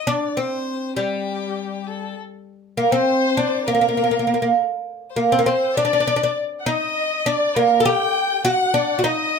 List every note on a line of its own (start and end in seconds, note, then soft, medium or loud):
0.07 0.38 D4 medium
0.07 0.39 D5 medium
0.37 0.99 C4 medium
0.37 0.97 C5 medium
0.97 2.13 G3 medium
0.97 1.88 G4 medium
1.87 2.17 A4 medium
2.77 2.92 A#3 medium
2.77 2.93 A#4 medium
2.77 2.92 A#4 medium
2.92 3.38 C4 medium
2.92 3.38 C5 medium
2.92 3.67 C5 medium
3.37 3.68 D4 medium
3.37 3.68 D5 medium
3.66 3.73 A#3 medium
3.66 4.52 A#4 medium
3.66 4.57 A#4 medium
3.75 3.80 A#3 medium
3.81 3.87 A#3 medium
3.88 3.96 A#3 soft
3.97 4.02 A#3 medium
4.04 4.10 A#3 soft
4.11 4.18 A#3 medium
4.19 4.26 A#3 soft
4.27 4.33 A#3 soft
4.34 4.41 A#3 medium
4.42 4.49 A#3 medium
5.10 5.18 C5 soft
5.16 5.32 A#3 medium
5.16 5.31 A#4 medium
5.16 5.47 A#4 medium
5.32 5.39 C4 medium
5.32 5.44 C5 medium
5.39 5.46 A#3 medium
5.45 5.77 C4 medium
5.45 5.74 C5 medium
5.45 5.78 C5 medium
5.76 5.84 D4 medium
5.76 6.36 D5 medium
5.76 6.21 D5 medium
5.85 5.91 D4 medium
5.93 5.99 D4 medium
6.00 6.06 D4 medium
6.07 6.14 D4 medium
6.16 6.22 D4 medium
6.22 6.29 D4 medium
6.22 6.36 D5 medium
6.59 6.66 F#5 medium
6.66 7.26 D#4 loud
6.66 7.26 D#5 medium
6.66 7.29 D#5 medium
7.26 7.57 D4 loud
7.26 7.56 D5 medium
7.26 7.57 D5 medium
7.56 7.80 A#3 medium
7.56 7.87 A#4 medium
7.56 7.86 A#4 medium
7.80 7.85 A4 medium
7.85 8.44 G4 loud
7.85 8.45 G5 medium
7.85 8.46 G5 medium
8.45 8.74 F#4 loud
8.45 8.76 F#5 medium
8.45 9.02 F#5 medium
8.74 8.98 D4 medium
8.74 9.07 D5 medium
8.99 9.03 F#4 medium
9.04 9.39 D#4 medium
9.04 9.39 D#5 medium